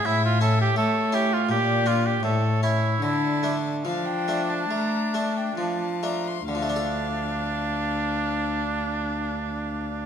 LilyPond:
<<
  \new Staff \with { instrumentName = "Violin" } { \time 4/4 \key d \minor \tempo 4 = 69 e''4 cis''4 d''4 cis''4 | a''4 f''16 g''8 a''16 bes''8 a''16 g''16 a''8 bes''16 c'''16 | f''1 | }
  \new Staff \with { instrumentName = "Oboe" } { \time 4/4 \key d \minor e'16 f'16 a'16 g'16 a'8 g'16 f'16 g'8 f'16 g'16 a'8 e'8 | e'8. r16 d'2~ d'8 r8 | d'1 | }
  \new Staff \with { instrumentName = "Harpsichord" } { \time 4/4 \key d \minor r8 <cis' e'>4 <cis' e'>8 r8 d'8 r8 <cis' e'>8 | r8 <a d'>4 <a d'>8 r8 <a d'>4 <a d'>8 | <d f a d' a'>1 | }
  \new Staff \with { instrumentName = "Harpsichord" } { \clef bass \time 4/4 \key d \minor a,4 a4 bes,4 a,4 | d4 f4 a4 f4 | r1 | }
  \new Staff \with { instrumentName = "Cello" } { \clef bass \time 4/4 \key d \minor a,4 a4 bes,4 a,4 | d4 f4 a4 f4 | d,1 | }
>>